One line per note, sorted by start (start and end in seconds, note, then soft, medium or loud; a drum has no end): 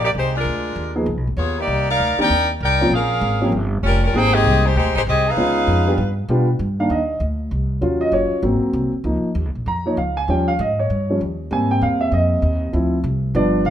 0.00 0.14 A#1 medium
0.00 0.09 A#3 medium
0.00 0.08 G4 medium
0.04 0.09 D#4 medium
0.04 0.09 D5 medium
0.15 0.44 C2 medium
0.15 0.33 G#3 medium
0.15 0.33 D#4 medium
0.15 0.33 G4 medium
0.15 0.34 C5 medium
0.35 0.95 G#3 medium
0.35 0.95 D4 medium
0.35 0.95 F4 medium
0.35 0.95 A#4 medium
0.45 0.75 D2 medium
0.76 1.05 D#2 medium
0.95 1.06 F3 medium
0.95 1.06 A#3 medium
0.95 1.05 B3 medium
0.95 1.06 D#4 medium
0.95 1.06 G#4 medium
1.06 1.17 C#2 medium
1.17 1.27 B1 medium
1.27 1.36 G#1 medium
1.37 1.67 D#2 medium
1.37 1.56 B3 medium
1.37 1.56 F4 medium
1.37 1.56 G#4 medium
1.37 1.55 C#5 medium
1.58 1.88 A#3 medium
1.58 1.88 D#4 medium
1.58 1.88 G4 medium
1.58 1.88 D5 medium
1.67 1.97 C2 medium
1.90 2.17 D#4 medium
1.90 2.17 A#4 medium
1.90 2.17 D5 medium
1.90 2.17 F5 medium
1.99 2.17 D2 medium
2.18 2.28 D#3 medium
2.18 2.29 A#3 medium
2.18 2.28 C4 medium
2.18 2.28 D4 medium
2.18 2.48 D#4 medium
2.18 2.28 G4 medium
2.18 2.48 A#4 loud
2.18 2.48 D5 medium
2.18 2.48 G5 loud
2.18 muted upright bass stroke soft
2.30 2.59 D#2 medium
2.60 2.90 C2 medium
2.60 2.90 D#4 medium
2.60 2.90 A#4 medium
2.60 2.90 D5 medium
2.60 2.90 G5 loud
2.81 2.90 F3 medium
2.81 2.90 A#3 medium
2.81 2.90 C4 medium
2.81 2.90 C#4 medium
2.81 2.91 F4 medium
2.91 3.21 A#1 medium
2.91 3.54 G#4 medium
2.91 3.54 A#4 medium
2.91 3.54 F5 loud
2.95 3.54 C#4 medium
3.21 3.51 G#1 loud
3.41 3.51 F3 medium
3.41 3.51 A#3 medium
3.41 3.51 C4 medium
3.41 3.51 C#4 medium
3.41 3.51 G4 medium
3.52 3.82 G1 medium
3.83 4.12 F1 medium
3.83 4.02 G3 medium
3.83 4.01 C#4 medium
3.83 4.02 F4 medium
3.83 4.02 A#4 medium
4.04 4.14 G3 medium
4.04 4.14 C#4 medium
4.04 4.14 F4 medium
4.04 4.14 A#4 medium
4.13 4.43 G#1 medium
4.13 4.60 G#3 medium
4.13 4.60 A#3 medium
4.13 4.60 C4 medium
4.13 4.60 D#4 medium
4.13 4.34 D#4 loud
4.13 4.60 G4 medium
4.13 4.33 G#4 loud
4.13 4.34 C5 loud
4.13 4.34 G5 loud
4.34 4.64 C4 medium
4.34 4.64 G4 medium
4.34 4.64 G#4 medium
4.34 4.64 D#5 loud
4.44 4.74 C2 medium
4.66 4.75 G#3 medium
4.66 4.76 D#4 medium
4.66 4.76 G4 medium
4.66 4.76 C5 medium
4.76 4.87 D2 medium
4.76 4.94 G#3 medium
4.76 4.94 D#4 medium
4.76 4.94 G4 medium
4.76 4.94 C5 medium
4.86 4.95 C2 medium
4.95 5.05 G#1 medium
4.95 5.01 G#3 medium
4.95 5.01 D#4 medium
4.95 5.00 G4 medium
4.95 5.01 C5 medium
5.06 5.36 C2 medium
5.06 5.25 C4 medium
5.06 5.25 G4 medium
5.06 5.25 G#4 medium
5.06 5.25 D#5 loud
5.28 5.99 D#4 medium
5.28 5.99 G#4 medium
5.28 6.19 B4 medium
5.28 6.19 F5 loud
5.36 5.66 C#2 medium
5.36 5.83 G#3 medium
5.36 5.83 B3 soft
5.36 5.83 C#4 medium
5.36 5.83 D#4 medium
5.36 5.83 F4 medium
5.67 5.97 F2 medium
5.87 5.97 G3 medium
5.87 5.97 B3 medium
5.87 5.97 D4 medium
5.87 5.97 F4 medium
5.87 5.97 G4 medium
5.98 6.27 G2 medium
6.28 6.58 B2 medium
6.28 6.46 G3 medium
6.28 6.47 B3 medium
6.28 6.47 D4 medium
6.28 6.46 F4 medium
6.28 6.47 G4 medium
6.59 6.89 G2 medium
6.79 6.97 D#3 soft
6.79 6.97 A#3 soft
6.79 6.97 D4 medium
6.79 6.90 F5 medium
6.90 7.19 D#2 medium
6.90 7.19 D#5 medium
7.20 7.50 D2 medium
7.51 7.81 C2 medium
7.81 8.11 D#2 medium
7.81 8.40 F#3 soft
7.81 8.40 C#4 soft
7.81 8.41 F4 medium
8.01 8.12 D#5 medium
8.12 8.30 F#1 medium
8.12 8.41 C#5 medium
8.31 muted upright bass stroke soft
8.42 8.61 G#1 medium
8.42 8.91 F#3 medium
8.42 8.91 A#3 soft
8.42 8.91 C4 medium
8.62 muted upright bass stroke soft
8.73 8.92 C2 medium
8.93 muted upright bass stroke soft
9.04 9.22 C#2 medium
9.04 9.27 F3 soft
9.04 9.27 A#3 soft
9.04 9.28 D#4 medium
9.23 muted upright bass stroke soft
9.35 9.45 D#2 medium
9.45 9.55 C#2 medium
9.55 9.65 A#1 medium
9.66 9.96 F2 medium
9.66 9.86 A#5 medium
9.86 9.96 F3 soft
9.86 9.96 A#3 soft
9.86 9.96 D#4 medium
9.86 9.97 C#5 medium
9.97 10.27 C#2 medium
9.97 10.16 F5 medium
10.17 10.28 G#5 medium
10.28 10.57 D#2 medium
10.28 10.51 F3 soft
10.28 10.51 G3 soft
10.28 10.51 C#4 medium
10.28 10.48 G5 medium
10.48 10.58 F5 medium
10.59 10.88 G#2 loud
10.59 10.78 D#5 medium
10.79 11.18 C#5 medium
10.90 11.19 G2 medium
11.10 11.19 F3 soft
11.10 11.19 G3 soft
11.10 11.20 C#4 soft
11.21 11.50 D#2 medium
11.51 11.80 G#2 medium
11.51 12.69 G3 soft
11.51 12.70 A#3 soft
11.51 12.70 C4 medium
11.51 11.70 G#5 medium
11.71 11.81 G5 medium
11.81 12.11 E2 medium
11.81 12.01 F5 medium
12.01 12.11 E5 medium
12.12 12.41 F2 medium
12.12 12.70 D#5 medium
12.42 12.72 D#2 medium
12.73 13.03 D2 medium
12.73 12.96 F3 soft
12.73 12.96 C4 soft
12.73 12.96 E4 medium
13.04 13.33 C2 medium
13.35 13.64 G1 loud
13.35 13.70 F3 medium
13.35 13.70 B3 medium
13.35 13.70 D4 medium
13.35 13.64 D5 medium
13.65 13.70 B1 medium
13.65 13.70 F5 medium